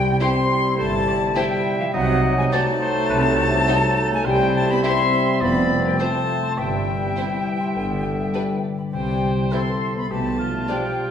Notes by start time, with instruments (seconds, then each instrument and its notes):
Already playing: double bass section C2, cello section C3, harp C3 G3 C4 E5, french horn section G3, bassoon G3, clarinet E4, flute section G5
0.06 harp G4
0.20 french horn section C4, viola section E4, violin section G4 C5, harp E5, flute section C6
0.34 harp C5
0.49 harp G5
0.63 harp E6
0.78 double bass section G1, cello section G2, french horn section A3, cor anglais C5, harp G5, flute section A5
0.92 harp E6
1.07 cor anglais D5, harp G5
1.21 harp C5
1.36 french horn section G3, viola section E4, violin section G4 C5, harp E5, cor anglais E5, flute section G5
1.50 harp G4
1.65 harp C4
1.79 french horn section F3, harp G3, flute section F5
1.93 double bass section C2, harp C3, cello section C3, french horn section F#3, bassoon F#3, clarinet D#4, cor anglais D#5, flute section F#5
2.09 harp A3
2.23 harp C4
2.37 french horn section G#3, harp F#4, flute section G#5
2.52 french horn section A3, viola section D#4, violin section F#4 C5, cor anglais D5, harp D#5, flute section A5
2.67 harp C5
2.81 cor anglais C5, harp F#5
2.96 harp D#6
3.10 double bass section C2, cello section C3, cor anglais B4, harp F#5
3.25 harp D#6
3.38 cor anglais A4, harp F#5
3.54 harp C5
3.68 viola section D#4, violin section F#4 C5, harp D#5
3.83 harp F#4
3.97 harp C4
4.11 french horn section G#3, harp A3, flute section G#5
4.25 double bass section C2, harp C3, cello section C3, french horn section G3, bassoon G3, clarinet E4, cor anglais C5, flute section G5
4.40 harp G3
4.55 french horn section A3, harp C4, flute section A5
4.69 french horn section B3, harp E4, flute section B5
4.83 french horn section C4, viola section E4, violin section G4 C5, harp C5, cor anglais E5, flute section C6
4.98 harp E4
5.12 harp E5
5.27 harp C6
5.41 double bass section F1, harp F2, cello section F2, bassoon F3, french horn section B3, clarinet C4, cor anglais D5, flute section B5
5.56 harp C3
5.70 harp C4
5.85 french horn section G3, harp F4, flute section G5
5.99 french horn section A3, viola section C4, violin section F4 C5, harp C5, cor anglais C5, flute section A5
6.14 harp F4
6.28 harp F5
6.43 harp C6
6.57 double bass section G1, harp G2, cello section G2, bassoon E3, french horn section G3, cor anglais E5, flute section G5
6.72 harp G3
6.87 harp C4
7.01 harp E4
7.16 viola section C4, violin section E4 C5, harp C5
7.31 harp E4
7.46 harp E5
7.60 harp C6
7.75 double bass section G1, harp G2, cello section G2, bassoon D3, clarinet B3
7.90 harp D3
8.05 harp G3
8.19 harp D4
8.34 viola section G3, violin section D4 B4, harp B4
8.49 harp G4
8.64 harp D5
8.79 harp B5
8.93 double bass section C2, harp C3, cello section C3, french horn section G3, cor anglais C5, flute section G5
9.08 harp C4
9.23 harp G3
9.37 harp E4
9.52 bassoon E3, viola section G3, clarinet C4, french horn section C4, violin section E4 C5, cor anglais A4, harp C5, flute section C6
9.67 harp G4
9.81 harp E5
9.96 french horn section B3, flute section B5, harp C6
10.10 double bass section B1, harp B2, cello section B2, french horn section A3, cor anglais G4, flute section A5
10.24 harp F3
10.39 harp G3, cor anglais F4
10.54 harp F4
10.68 bassoon F3, french horn section G3, viola section G3, clarinet D4, violin section F4 D5, harp D5, flute section G5
10.83 harp G4
10.97 harp F5